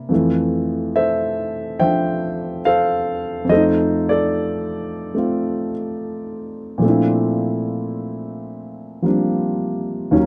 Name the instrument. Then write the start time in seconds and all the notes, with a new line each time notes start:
grand piano
Already playing: C3 A#3 D4 E4
0.09 F2 F3 A3
0.13 E3
0.96 A4 C5 E5
1.80 F3 D4 C5 E5 G5
2.65 A4 C5 F5
3.45 F2
3.49 F3 A3 A4 C5 D#5
3.56 D#4
4.09 A4 D5
5.15 A3 C4 F4
6.78 A#2 F3
6.82 A3 C4 D4
6.89 E4
9.02 F3 G3 A#3 C4 D4
10.11 D#2 D#3 F#3 C#4